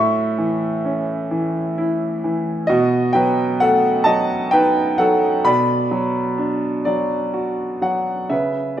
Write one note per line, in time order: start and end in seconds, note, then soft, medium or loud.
0.00 2.65 A2 medium
0.00 1.74 E5 medium
0.00 1.72 C#6 medium
0.38 1.30 E3 soft
0.85 2.64 C#4 soft
1.31 2.23 E3 soft
1.78 2.66 E4 soft
2.24 2.68 E3 soft
2.67 5.42 B2 medium
2.67 3.12 F#4 medium
2.67 3.10 D#5 medium
3.13 4.05 F#3 medium
3.13 3.57 B4 medium
3.13 3.61 G5 medium
3.60 5.42 A3 medium
3.60 4.04 A4 medium
3.60 4.08 F#5 medium
4.04 4.97 F#3 medium
4.04 4.49 D#5 medium
4.04 4.53 A5 medium
4.51 5.42 D#4 medium
4.51 4.96 B4 medium
4.51 5.00 G5 medium
4.98 5.44 F#3 medium
4.98 5.42 A4 medium
4.98 5.46 F#5 medium
5.44 8.27 B2 medium
5.44 6.83 D5 medium
5.44 7.79 B5 medium
5.91 6.85 F#3 medium
6.38 8.27 D4 soft
6.85 7.80 F#3 soft
6.85 7.85 D5 medium
7.34 8.28 F#4 soft
7.81 8.29 F#3 soft
7.81 8.28 F#5 medium
8.29 8.80 C#3 medium
8.29 8.80 B4 soft
8.29 8.75 E5 medium